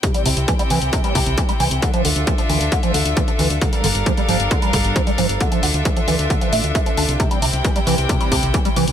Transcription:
<<
  \new Staff \with { instrumentName = "String section" } { \time 4/4 \key c \mixolydian \tempo 4 = 134 <c c' e' g' g''>1 | <d d' f' a' e''>1 | <g d' bes' f''>1 | <d d' f' e''>1 |
<c c' e' g' g''>1 | }
  \new Staff \with { instrumentName = "Acid bass" } { \clef bass \time 4/4 \key c \mixolydian c16 g16 c16 r16 e16 g16 e16 r16 c16 g16 c16 r16 e16 g16 e16 r16 | d16 f16 d16 r16 e16 f16 e16 r16 d16 f16 d16 r16 e16 f16 e16 r16 | d16 g16 d16 r16 f16 g16 f16 r16 d16 g16 d16 r16 f16 g16 f16 r16 | d16 f16 d16 r16 e16 f16 e16 r16 d16 f16 a16 r16 a16 f16 d'16 r16 |
c16 g16 c16 r16 e16 g16 e16 r16 c16 g16 c16 r16 e16 g16 e16 r16 | }
  \new Staff \with { instrumentName = "FM bass" } { \clef bass \time 4/4 \key c \mixolydian r8 c,16 c,16 r8 c,16 c,16 r8 c,16 c,16 r8 c,16 c,16 | r8 d,16 d,16 r8 d,16 d,16 r8 d,16 d,16 r8 d,16 d,16 | r8 g,,16 g,,16 r8 g,,16 g,,16 r8 g,,16 g,,16 r8 g,,16 g,,16 | r8 d,16 d,16 r8 d,16 d,16 r8 a,,16 d,16 r8 d,16 c,16 |
r8 c,16 c,16 r8 c,16 c,16 r8 c,16 c,16 r8 c,16 c,16 | }
  \new DrumStaff \with { instrumentName = "Drums" } \drummode { \time 4/4 <hh bd>16 hh16 hho16 hh16 <hh bd>16 hh16 hho16 hh16 <hh bd>16 hh16 <hho bd>16 hh16 <hh bd>16 hh16 hho16 hh16 | <hh bd>16 hh16 hho16 hh16 <hh bd>16 hh16 hho16 hh16 <hh bd>16 hh16 hho16 hh16 <hh bd>16 hh16 hho16 hh16 | <hh bd>16 hh16 hho16 hh16 <hh bd>16 hh16 hho16 hh16 <hh bd>16 hh16 <hho bd>16 hh16 <hh bd>16 hh16 hho16 hh16 | <hh bd>16 hh16 hho16 hh16 <hh bd>16 hh16 hho16 hh16 <hh bd>16 hh16 hho16 hh16 <hh bd>16 hh16 hho16 hh16 |
<hh bd>16 hh16 hho16 hh16 <hh bd>16 hh16 hho16 hh16 <hh bd>16 hh16 <hho bd>16 hh16 <hh bd>16 hh16 hho16 hh16 | }
>>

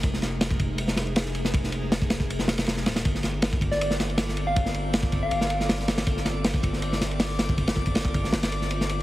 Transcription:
<<
  \new Staff \with { instrumentName = "Synth texture" } { \time 4/4 \key g \phrygian \tempo 4 = 159 r1 | r1 | <d'' d'''>1~ | <d'' d'''>1~ |
<d'' d'''>1~ | <d'' d'''>1 | }
  \new Staff \with { instrumentName = "Soft synth lead" } { \time 4/4 \key g \phrygian r1 | r1 | r4. r16 d''8 r4. f''16~ | f''16 r4. f''4. r8. |
r1 | r1 | }
  \new Staff \with { instrumentName = "Ambient pad" } { \time 4/4 \key g \phrygian <aes bes ees' aes'>1~ | <aes bes ees' aes'>1 | <c' f' a'>1~ | <c' f' a'>1~ |
<c' f' a'>1~ | <c' f' a'>1 | }
  \new Staff \with { instrumentName = "Sub bass" } { \clef bass \time 4/4 \key g \phrygian f,,2~ f,,8 f,,4.~ | f,,2 f,,4. ees,,8 | g,,2~ g,,8 g,,4.~ | g,,2 g,,2 |
g,,2~ g,,8 g,,4.~ | g,,2 g,,2 | }
  \new DrumStaff \with { instrumentName = "Drums" } \drummode { \time 4/4 <bd cymr>16 sn16 <cymr sn>8 <cymr sn>16 bd16 <bd cymr>8 cymr16 sn16 <cymr sn>16 cymr16 <cymr sn>16 sn16 cymr16 sn16 | <bd cymr>16 sn16 cymr8 <cymr sn>16 bd16 <cymr sn>16 bd16 cymr16 sn16 <cymr sn>16 <cymr sn>16 <cymr sn>16 sn16 <cymr sn>16 <cymr sn>16 | <bd cymr>16 sn16 <cymr sn>8 <cymr sn>16 bd16 <bd cymr>16 sn16 cymr16 sn16 <cymr sn>16 cymr16 <cymr sn>16 sn16 cymr8 | <bd cymr>16 sn16 cymr8 <cymr sn>16 bd16 <bd cymr>8 cymr16 sn16 cymr16 sn16 <cymr sn>16 sn16 <cymr sn>16 <cymr sn>16 |
<bd cymr>16 sn16 <cymr sn>8 <cymr sn>16 bd16 <bd cymr>16 sn16 cymr16 sn16 <cymr sn>16 cymr16 <cymr sn>16 sn16 <cymr sn>16 bd16 | <bd cymr>16 <cymr sn>16 bd16 <bd cymr>16 <cymr sn>16 bd16 <bd cymr>16 sn16 <cymr sn>16 <cymr sn>16 cymr16 sn16 cymr16 sn16 cymr8 | }
>>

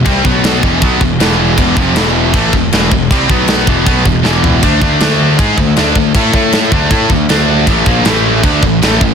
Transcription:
<<
  \new Staff \with { instrumentName = "Distorted electric guitar" } { \clef bass \time 4/4 \tempo 4 = 157 <c g c'>8 <b, fis b>4 <e, b, e>8 <b, fis b>8 <e, b,>8 <e, b, e>4 | <e, b, e>8 <f, c f>8 <e, b, e>4 <a, e a>8 <e, b,>8 <e, b, e>8 <e, b,>8 | <c g c'>8 <b, fis b>4 <e, b, e>8 <b, fis b>8 <e, b,>8 <e, b, e>4 | <d a d'>8 <d a d'>8 <d a d'>4 <gis dis' gis'>8 <d a>8 <d a d'>8 <d a>8 |
<a e' a'>8 <a e' a'>4 <d a d'>8 <a e' a'>8 <d a>8 <d a d'>4 | <a, e a>8 <ais, f ais>8 <a, e a>4 <d a d'>8 <a, e>8 <a, e a>8 <a, e>8 | }
  \new Staff \with { instrumentName = "Distorted electric guitar" } { \clef bass \time 4/4 <c g c'>8 <b, fis b>4 <e, b, e>8 <b, fis b>8 <e, b,>8 <e, b, e>4 | <e, b, e>8 <f, c f>8 <e, b, e>4 <a, e a>8 <e, b,>8 <e, b, e>8 <e, b,>8 | <c g c'>8 <b, fis b>4 <e, b, e>8 <b, fis b>8 <e, b,>8 <e, b, e>4 | <d a d'>8 <d a d'>8 <d a d'>4 <gis dis' gis'>8 <d a>8 <d a d'>8 <d a>8 |
<a e' a'>8 <a e' a'>4 <d a d'>8 <a e' a'>8 <d a>8 <d a d'>4 | <a, e a>8 <ais, f ais>8 <a, e a>4 <d a d'>8 <a, e>8 <a, e a>8 <a, e>8 | }
  \new Staff \with { instrumentName = "Distorted electric guitar" } { \clef bass \time 4/4 <c g c'>8 <b, fis b>4 <e, b, e>8 <b, fis b>8 <e, b,>8 <e, b, e>4 | <e, b, e>8 <f, c f>8 <e, b, e>4 <a, e a>8 <e, b,>8 <e, b, e>8 <e, b,>8 | <c g c'>8 <b, fis b>4 <e, b, e>8 <b, fis b>8 <e, b,>8 <e, b, e>4 | <d a d'>8 <d a d'>8 <d a d'>4 <gis dis' gis'>8 <d a>8 <d a d'>8 <d a>8 |
<a e' a'>8 <a e' a'>4 <d a d'>8 <a e' a'>8 <d a>8 <d a d'>4 | <a, e a>8 <ais, f ais>8 <a, e a>4 <d a d'>8 <a, e>8 <a, e a>8 <a, e>8 | }
  \new Staff \with { instrumentName = "Picked electric bass" } { \clef bass \time 4/4 c,8 b,,4 e,,8 b,,8 e,,8 e,,4 | e,,8 f,,8 e,,4 a,,8 e,,8 e,,8 e,,8 | c,8 b,,4 e,,8 b,,8 e,,8 e,,4 | d,8 d,8 d,4 gis,8 d,8 d,8 d,8 |
a,8 a,4 d,8 a,8 d,8 d,4 | a,,8 ais,,8 a,,4 d,8 a,,8 a,,8 a,,8 | }
  \new DrumStaff \with { instrumentName = "Drums" } \drummode { \time 4/4 <cymc bd>8 bd8 <cymc sn>8 bd8 <cymc bd>8 bd8 <cymc sn>4 | <cymc bd>8 bd8 <cymc sn>4 <cymc bd>8 bd8 <cymc sn>8 bd8 | <cymc bd>8 bd8 <cymc sn>8 bd8 <cymc bd>8 bd8 sn8 tomfh8 | <cymc bd>8 bd8 <cymc sn>4 <cymc bd>8 bd8 <cymc sn>8 bd8 |
<cymc bd>8 bd8 <cymc sn>8 bd8 <cymc bd>8 bd8 <cymc sn>4 | <cymc bd>8 bd8 <cymc sn>4 <cymc bd>8 bd8 <cymc sn>8 bd8 | }
>>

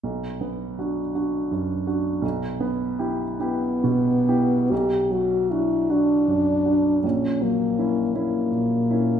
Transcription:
<<
  \new Staff \with { instrumentName = "Grand piano" } { \time 6/8 \key b \minor \tempo 4. = 53 b,,8 b8 <d' fis'>8 <d' fis'>8 fis,8 <d' fis'>8 | b,,8 b8 <e' g'>8 <e' g'>8 b,8 <e' g'>8 | b,,8 fis8 <d' fis'>8 <d' fis'>8 fis,8 <d' fis'>8 | ais,,8 fis8 <cis' e'>8 <cis' e'>8 ais,8 <cis' e'>8 | }
  \new Staff \with { instrumentName = "French horn" } { \time 6/8 \key b \minor r2. | r4. b4. | g'8 fis'8 e'8 d'4. | cis'8 ais4 ais4. | }
>>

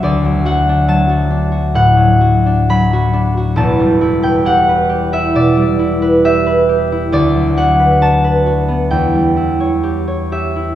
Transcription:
\new Staff \with { instrumentName = "Harp" } { \time 4/4 \key d \major \tempo 4 = 68 << { <d'' e'' fis''>8 fis''8 a''4 fis''4 b''4 | a''8. g''16 fis''8. e''16 d''4 e''4 | d''8 fis''8 a''4 g''4. e''8 | } \\ { <d, fis d' fis'>16 fis16 fis'16 d'16 fis16 fis'16 d'16 fis'16 a,16 fis16 fis'16 d'16 fis16 fis'16 d'16 fis'16 | <e,, e,>16 g16 e'16 b'16 g'16 b'16 g'16 e'16 b,16 g16 e'16 b'16 g'16 b'16 g'16 e'16 | d,16 fis16 fis'16 b'16 fis'16 b'16 fis'16 b16 e,16 g16 e'16 cis''16 g'16 cis''16 g'16 e'16 | } >> }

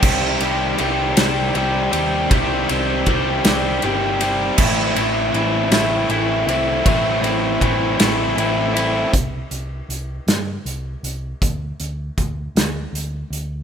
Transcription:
<<
  \new Staff \with { instrumentName = "Overdriven electric guitar" } { \time 6/8 \key c \lydian \tempo 4. = 53 <c ees g c' g'>8 <g c' g'>8 <ees g c' g'>8 <g c' g'>8 <ees g c' g'>8 <g c' g'>8 | <c ees g c' g'>8 <g c' g'>8 <ees g c' g'>8 <g c' g'>8 <ees g c' g'>8 <g c' g'>8 | <a, e a c' e'>8 <a c' e'>8 <e a c' e'>8 <a c' e'>8 <e a c' e'>8 <a c' e'>8 | <a, e a c' e'>8 <a c' e'>8 <e a c' e'>8 <a c' e'>8 <e a c' e'>8 <a c' e'>8 |
r2. | r2. | }
  \new Staff \with { instrumentName = "Picked electric bass" } { \clef bass \time 6/8 \key c \lydian c,8 c,8 c,8 c,8 c,8 ees,8 | c,8 c,8 c,8 c,8 g,,4 | a,,8 a,,8 a,,8 a,,8 a,,8 c,8 | a,,8 a,,8 a,,8 a,,8 a,,4 |
c,8 c,8 c,8 g,8 c,8 c,8 | d,8 d,8 d,8 d,8 d,8 d,8 | }
  \new DrumStaff \with { instrumentName = "Drums" } \drummode { \time 6/8 <cymc bd>8 cymr8 cymr8 <cymr sn>8 cymr8 cymr8 | <bd cymr>8 cymr8 <bd cymr>8 <cymr sn>8 cymr8 cymr8 | <cymc bd>8 cymr8 cymr8 <cymr sn>8 cymr8 cymr8 | <bd cymr>8 cymr8 <bd cymr>8 <cymr sn>8 cymr8 cymr8 |
<hh bd>8 hh8 hh8 <hh sn>8 hh8 hh8 | <hh bd>8 hh8 <hh bd>8 <hh sn>8 hh8 hh8 | }
>>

